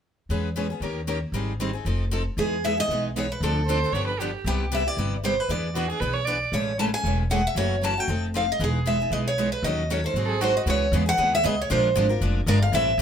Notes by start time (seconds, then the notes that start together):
0.29 E2 E3 G#3 B3 C#4 G#4 B4
0.56 E3 G#3 B3 C#4 G#4 B4
0.70 B3 C#4 G#4
0.80 D#2 D#3 A#3 C#4 G4 A#4
1.07 D#3 A#3 C#4 G4 A#4
1.32 G#1 D#3 G3 C4 D#4 G#4
1.60 D#3 G3 C4 D#4 G#4
1.73 C4 D#4 G#4
1.85 F1 F3 C4 D#4 A4
2.11 F3 C4 D#4 A4
2.37 E2 E3 G#3 B3 D#4 G#4
2.64 E3 G#3 B3 D#4 G#4 E5
2.77 B3 D#4 G#4 D#5
2.88 B1 E3 G#3 B3 D#4
2.93 G#4
3.16 E3 G#3 B3 D#4 G#4 C#5
3.32 B4
3.41 D2 D3 F3 C4 D4 A4
3.67 D3 F3 C4 D4 A4 C5
3.84 C4 D4 A4
3.92 G1 D3 F3 B3 D4 G4 C#5
4.07 B4
4.19 D3 F3 B3 D4 G4
4.44 C2 C3 G3 B3 E4 G4
4.72 C3 G3 B3 E4 G4 E5
4.87 B3 E4 G4 D5
4.97 G1 C3 G3 B3 E4 G4
5.24 C3 G3 B3 E4 G4 C5
5.40 B4
5.49 E2 E3 B3 D4 G#4 B4 D5
5.75 E3 B3 D4 F#4 G#4 B4
5.89 B3 D4 G#4
6.00 B1 E3 B3 D4 G#4 B4
6.14 C#5
6.25 E3 B3 D4 G#4 B4 D5
6.52 A1 C#3 E3 G#3 A3 C#4 E4 G#4 A4 C#5
6.79 C#3 E3 G#3 A3 C#4 E4 G#4 A4 A5
6.94 A3 C#4 G#4 G#5
7.04 E1 C#3 E3 G#3 A3 C#4 E4 G#4 A4
7.31 C#3 E3 G#3 A3 C#4 E4 G#4 A4 F#5
7.47 E5
7.55 F#1 C#3 E3 F#3 A3 C#4 E4 F#4 A4 C#5
7.82 C#3 E3 F#3 A3 C#4 E4 F#4 A4 A5
7.98 A3 C#4 F#4 G5
8.08 F1 F3 C4 D#4 A4
8.34 F3 C4 D#4 A4 F5
8.52 D#5
8.60 E1 E3 G#3 B3 D#4 G#4
8.64 G#4
8.86 E3 G#3 B3 D#4 G#4 E5
9.00 B3 D#4 G#4
9.10 B1 E3 G#3 B3 D#4 G#4 D#5
9.28 C#5
9.38 E3 G#3 B3 D#4 G#4
9.52 B4
9.63 D#2 D#3 F#3 C#4 D#4 A4 D#5
9.90 D#3 F#3 C#4 D#4 A4 C#5
10.04 C#4 D#4 A4 C5
10.14 G#1 D#3 F#3 C4 D#4 G#4
10.25 G#4 A4
10.41 D#3 F#3 C4 D#4 F#4 G#4 C5
10.57 D#5
10.66 C#2 C#3 E3 G#3 B3 C#4 E4 G#4 C#5
10.92 E2 C#3 E3 G#3 B3 C#4 E4 G#4
11.06 B3 C#4 G#4 F#5
11.17 D#2 C#3 E3 G#3 B3 C#4 E4 G#4
11.35 E5
11.44 C#2 C#3 E3 G#3 B3 C#4 E4 G#4 D#5
11.61 C#5
11.70 A#1 F3 G#3 D4 F4 A#4 C5
11.95 G#1 F3 G#3 D4 F4 A#4
12.09 D4 F4 A#4
12.21 F1 F3 G#3 D4 F4 A#4
12.46 G1 F3 G#3 D4 F4 A#4 D5
12.62 F5
12.72 A1 E3 G3 C4 E4 A4 E5
12.98 D2